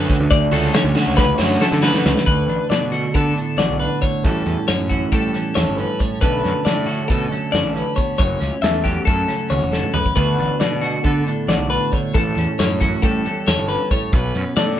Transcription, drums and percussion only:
0.10 kick medium
0.10 closed hi-hat medium
0.31 kick loud
0.31 closed hi-hat medium
0.53 closed hi-hat medium
0.74 snare loud
0.74 closed hi-hat loud
0.97 snare medium
1.18 kick loud
1.18 snare medium
1.40 snare medium
1.61 snare medium
1.72 snare medium
1.83 snare medium
1.94 snare medium
2.06 snare loud
2.17 snare medium
2.27 kick loud
2.27 closed hi-hat medium
2.49 closed hi-hat medium
2.71 snare loud
2.71 closed hi-hat medium
2.94 closed hi-hat medium
3.15 kick medium
3.15 closed hi-hat medium
3.37 closed hi-hat medium
3.59 snare loud
3.59 closed hi-hat medium
3.81 closed hi-hat medium
4.03 kick medium
4.03 closed hi-hat medium
4.24 kick loud
4.24 closed hi-hat medium
4.46 closed hi-hat medium
4.68 snare loud
4.68 closed hi-hat medium
4.91 kick medium
4.91 closed hi-hat medium
5.12 kick medium
5.12 closed hi-hat medium
5.34 snare soft
5.34 closed hi-hat medium
5.56 snare loud
5.56 closed hi-hat medium
5.78 closed hi-hat medium
6.00 kick medium
6.00 closed hi-hat medium
6.22 kick loud
6.22 closed hi-hat medium
6.45 snare soft
6.45 closed hi-hat medium
6.66 snare loud
6.66 closed hi-hat medium
6.89 closed hi-hat medium
7.10 kick medium
7.10 closed hi-hat medium
7.32 closed hi-hat medium
7.54 snare loud
7.54 closed hi-hat medium
7.77 closed hi-hat medium
7.98 kick medium
7.98 closed hi-hat medium
8.19 kick loud
8.19 closed hi-hat medium
8.41 snare soft
8.41 closed hi-hat medium
8.64 snare loud
8.64 closed hi-hat medium
8.85 kick medium
8.85 snare soft
8.85 closed hi-hat medium
9.07 kick loud
9.07 closed hi-hat medium
9.29 snare soft
9.29 closed hi-hat medium
9.51 high tom medium
9.73 snare medium
9.83 mid tom medium
9.94 floor tom medium
10.06 kick medium
10.16 kick medium
10.16 closed hi-hat medium
10.38 closed hi-hat medium
10.61 snare loud
10.61 closed hi-hat medium
10.82 closed hi-hat medium
11.04 kick medium
11.04 closed hi-hat medium
11.27 closed hi-hat medium
11.49 snare loud
11.49 closed hi-hat medium
11.71 closed hi-hat medium
11.93 kick medium
11.93 closed hi-hat medium
12.15 kick loud
12.15 closed hi-hat medium
12.38 closed hi-hat medium
12.59 snare loud
12.59 closed hi-hat medium
12.81 kick medium
12.81 closed hi-hat medium
13.03 kick medium
13.03 closed hi-hat medium
13.26 closed hi-hat medium
13.47 snare loud
13.47 closed hi-hat medium
13.69 closed hi-hat medium
13.91 kick medium
13.91 closed hi-hat medium
14.13 kick loud
14.13 closed hi-hat medium
14.35 closed hi-hat medium
14.56 snare loud
14.56 closed hi-hat medium

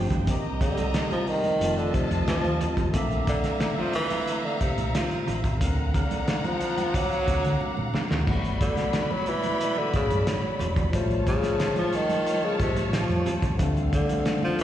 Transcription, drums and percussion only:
0.11 kick loud
0.11 closed hi-hat soft
0.11 low conga medium
0.27 kick loud
0.27 closed hi-hat medium
0.61 kick loud
0.61 closed hi-hat medium
0.77 closed hi-hat medium
0.77 high conga medium
0.94 snare loud
0.94 closed hi-hat medium
0.94 muted conga soft
1.11 closed hi-hat soft
1.11 high conga medium
1.27 open hi-hat medium
1.44 closed hi-hat medium
1.44 high conga medium
1.61 closed hi-hat medium
1.78 closed hi-hat soft
1.94 kick medium
1.94 closed hi-hat medium
2.11 closed hi-hat medium
2.11 high conga medium
2.28 snare loud
2.28 closed hi-hat loud
2.28 muted conga soft
2.44 closed hi-hat soft
2.44 high conga medium
2.61 closed hi-hat medium
2.61 low conga medium
2.77 kick loud
2.77 closed hi-hat soft
2.77 low conga medium
2.94 kick loud
2.94 closed hi-hat medium
2.94 muted conga soft
3.11 closed hi-hat soft
3.11 muted conga soft
3.27 kick loud
3.27 closed hi-hat medium
3.44 snare soft
3.44 closed hi-hat medium
3.44 high conga medium
3.60 snare loud
3.60 closed hi-hat medium
3.60 muted conga soft
3.78 high conga medium
3.93 closed hi-hat medium
4.10 closed hi-hat medium
4.10 high conga medium
4.28 closed hi-hat medium
4.28 muted conga soft
4.44 muted conga soft
4.61 kick medium
4.61 closed hi-hat medium
4.77 closed hi-hat medium
4.77 high conga medium
4.94 snare loud
4.94 closed hi-hat loud
4.94 muted conga soft
5.11 closed hi-hat soft
5.11 high conga medium
5.27 closed hi-hat medium
5.27 low conga medium
5.44 kick loud
5.44 closed hi-hat medium
5.44 low conga medium
5.61 kick loud
5.61 closed hi-hat medium
5.61 muted conga soft
5.94 kick loud
5.94 closed hi-hat medium
6.11 closed hi-hat medium
6.11 high conga medium
6.28 snare loud
6.28 closed hi-hat medium
6.28 muted conga soft
6.44 closed hi-hat soft
6.44 muted conga soft
6.44 high conga medium
6.61 closed hi-hat medium
6.78 closed hi-hat medium
6.78 high conga medium
6.94 kick loud
6.94 closed hi-hat medium
6.94 muted conga soft
7.11 closed hi-hat soft
7.28 kick medium
7.28 closed hi-hat medium
7.44 closed hi-hat medium
7.44 high conga medium
7.61 muted conga soft
7.77 muted conga soft
7.77 high conga medium
7.94 snare medium
7.94 low conga medium
8.10 snare loud
8.10 low conga medium
8.27 kick loud
8.27 crash medium
8.27 muted conga soft
8.44 closed hi-hat soft
8.44 muted conga soft
8.61 kick loud
8.61 closed hi-hat medium
8.77 snare soft
8.77 closed hi-hat medium
8.77 high conga medium
8.93 snare loud
8.93 closed hi-hat medium
8.93 muted conga soft
9.11 muted conga soft
9.11 high conga medium
9.26 closed hi-hat medium
9.43 closed hi-hat medium
9.43 high conga medium
9.61 closed hi-hat medium
9.61 muted conga soft
9.77 muted conga soft
9.93 kick medium
9.93 closed hi-hat medium
10.10 closed hi-hat soft
10.10 high conga medium
10.27 snare loud
10.27 closed hi-hat loud
10.43 muted conga soft
10.43 high conga medium
10.59 closed hi-hat medium
10.59 low conga medium
10.76 kick loud
10.76 closed hi-hat medium
10.76 low conga medium
10.93 kick loud
10.93 closed hi-hat medium
11.10 closed hi-hat soft
11.27 kick loud
11.27 closed hi-hat medium
11.43 snare soft
11.43 closed hi-hat medium
11.43 high conga medium
11.60 snare loud
11.60 closed hi-hat medium
11.60 muted conga soft
11.76 closed hi-hat soft
11.76 muted conga soft
11.76 high conga medium
11.93 closed hi-hat medium
12.09 closed hi-hat medium
12.09 high conga medium
12.27 closed hi-hat medium
12.43 muted conga soft
12.59 kick medium
12.59 closed hi-hat medium
12.76 closed hi-hat medium
12.76 high conga medium
12.93 snare loud
12.93 closed hi-hat loud
13.09 closed hi-hat soft
13.09 muted conga soft
13.09 high conga soft
13.26 closed hi-hat medium
13.26 low conga medium
13.42 kick loud
13.42 closed hi-hat soft
13.42 low conga medium
13.59 kick loud
13.59 closed hi-hat medium
13.59 muted conga soft
13.76 closed hi-hat soft
13.76 muted conga soft
13.93 kick loud
13.93 closed hi-hat medium
14.09 closed hi-hat medium
14.09 high conga medium
14.26 snare loud
14.26 closed hi-hat medium
14.26 muted conga soft
14.43 muted conga soft
14.43 high conga medium
14.59 closed hi-hat medium

